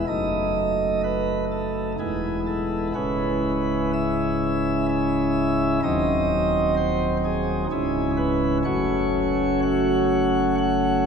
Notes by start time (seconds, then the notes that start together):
0.08 F#1 F#2 A3 D#4 D#5
1.04 B4
1.52 A4
1.99 E1 E2 G#3 B3 E4 G#4
2.46 A4
2.94 C#1 C#2 G#3 C#4 E4 B4
3.93 E5
4.89 E5
5.83 D#1 D#2 F#3 C4 D#4 D#5
6.77 C5
7.25 G#4
7.71 C#1 C#2 G#3 C#4 E4 G#4
8.17 B4
8.64 F#1 F#2 A3 C#4 F#4 C#5
9.62 F#5
10.58 F#5